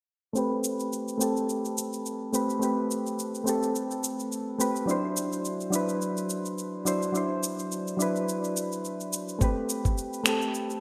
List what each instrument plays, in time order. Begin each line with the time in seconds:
0.33 synth keys A3 C4 G4, cabasa
0.38 synth keys B4
0.64 cabasa
0.80 cabasa
0.93 cabasa
1.08 cabasa
1.18 synth keys A3 C4 G4, cabasa
1.23 synth keys A4
1.37 cabasa
1.49 cabasa
1.65 cabasa
1.78 cabasa
1.93 cabasa
2.06 cabasa
2.33 synth keys A3 C4 G4 B4, cabasa
2.50 cabasa
2.59 synth keys A3 C4 G4, cabasa
2.65 synth keys B4
2.91 cabasa
3.07 cabasa
3.19 cabasa
3.35 cabasa
3.44 synth keys A3 C4 G4, cabasa
3.49 synth keys A4
3.63 cabasa
3.75 cabasa
3.91 cabasa
4.04 cabasa
4.20 cabasa
4.32 cabasa
4.58 synth keys A3 C4 G4 B4, cabasa
4.76 cabasa
4.86 synth keys F#3 D4 E4, cabasa
4.91 synth keys C5
5.17 cabasa
5.33 cabasa
5.45 cabasa
5.60 cabasa
5.70 synth keys F#3 D4 E4, cabasa
5.75 synth keys B4
5.89 cabasa
6.01 cabasa
6.17 cabasa
6.30 cabasa
6.46 cabasa
6.58 cabasa
6.85 synth keys F#3 D4 E4 C5, cabasa
7.02 cabasa
7.12 synth keys F#3 D4 E4, cabasa
7.17 synth keys C5
7.43 cabasa
7.59 cabasa
7.72 cabasa
7.88 cabasa
7.97 synth keys F#3 D4 E4, cabasa
8.02 synth keys B4
8.16 cabasa
8.29 cabasa
8.44 cabasa
8.57 cabasa
8.72 cabasa
8.85 cabasa
9.01 cabasa
9.13 cabasa
9.29 cabasa
9.39 synth keys A3 C4 G4, kick, cabasa
9.44 synth keys B4
9.69 cabasa
9.85 kick, cabasa
9.98 cabasa
10.13 cabasa
10.24 synth keys A3 C4 G4, finger snap, cabasa
10.29 synth keys A4
10.42 cabasa
10.54 cabasa
10.70 cabasa